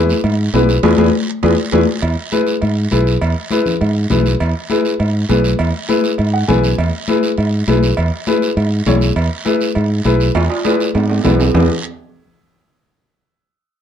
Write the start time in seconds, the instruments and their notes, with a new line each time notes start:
Already playing: fingered electric bass E2, upright piano E4 G#4 B4
0.09 high conga, short guiro
0.24 fingered electric bass G#2, cowbell, high conga, long guiro
0.54 fingered electric bass B1, upright piano E4 G#4 B4, high conga, low timbale, short guiro
0.69 short guiro
0.83 fingered electric bass E2, upright piano E4 G#4 B4, high conga, high timbale, long guiro
0.98 fingered electric bass E2, upright piano E4 G#4 B4, high conga, high timbale, long guiro
1.43 fingered electric bass E2, upright piano E4 G#4 B4, high conga, high timbale, long guiro
1.72 fingered electric bass E2, upright piano E4 G#4 B4, high conga, high timbale, long guiro
2.02 fingered electric bass E2, cowbell, high conga, long guiro
2.32 upright piano E4 G#4 B4, cowbell, high conga, short guiro
2.47 short guiro
2.62 fingered electric bass G#2, cowbell, high conga, long guiro
2.91 fingered electric bass B1, upright piano E4 G#4 B4, cowbell, high conga, short guiro
3.07 short guiro
3.21 fingered electric bass E2, cowbell, high conga, long guiro
3.51 upright piano E4 G#4 B4, cowbell, high conga, short guiro
3.66 low conga, short guiro
3.80 fingered electric bass G#2, cowbell, high conga, long guiro
4.10 fingered electric bass B1, upright piano E4 G#4 B4, cowbell, high conga, low conga, short guiro
4.26 short guiro
4.40 fingered electric bass E2, cowbell, high conga, long guiro
4.70 upright piano E4 G#4 B4, cowbell, high conga, short guiro
4.85 short guiro
5.00 fingered electric bass G#2, cowbell, high conga, long guiro
5.29 fingered electric bass B1, upright piano E4 G#4 B4, cowbell, high conga, low timbale, short guiro
5.44 short guiro
5.59 fingered electric bass E2, cowbell, high conga, long guiro
5.88 upright piano E4 G#4 B4, cowbell, high conga, short guiro
6.04 short guiro
6.18 fingered electric bass G#2, cowbell, high conga, long guiro
6.33 upright piano F#5
6.48 fingered electric bass B1, upright piano E4 G#4 B4 G#5, cowbell, high conga, low conga, low timbale, short guiro
6.63 short guiro
6.78 fingered electric bass E2, cowbell, high conga, long guiro
7.08 upright piano E4 G#4 B4, cowbell, high conga, short guiro
7.23 short guiro
7.38 fingered electric bass G#2, cowbell, high conga, long guiro
7.67 fingered electric bass B1, upright piano E4 G#4 B4, cowbell, high conga, short guiro
7.83 short guiro
7.97 fingered electric bass E2, cowbell, high conga, long guiro
8.27 upright piano E4 G#4 B4, cowbell, high conga, short guiro
8.42 short guiro
8.57 fingered electric bass G#2, cowbell, high conga, long guiro
8.86 fingered electric bass B1, upright piano E4 G#4 C#5, cowbell, high conga, low conga, low timbale, short guiro
9.01 short guiro
9.16 fingered electric bass E2, cowbell, high conga, long guiro
9.45 upright piano E4 G#4 B4, cowbell, high conga, short guiro
9.61 short guiro
9.75 fingered electric bass G#2, cowbell, high conga, long guiro
10.05 fingered electric bass B1, upright piano E4 G#4 B4, cowbell, high conga, short guiro
10.20 short guiro
10.35 fingered electric bass E2, cowbell, high conga, high timbale, long guiro
10.50 high timbale
10.64 upright piano E4 G#4 B4, cowbell, high conga, high timbale, short guiro
10.80 short guiro
10.95 fingered electric bass G#2, cowbell, high conga, low timbale, long guiro
11.10 low timbale
11.24 fingered electric bass B1, upright piano E4 G#4 B4, cowbell, high conga, low conga, low timbale, short guiro
11.40 low timbale, short guiro
11.54 fingered electric bass E2, upright piano E4 G#4 B4, low conga, low timbale, long guiro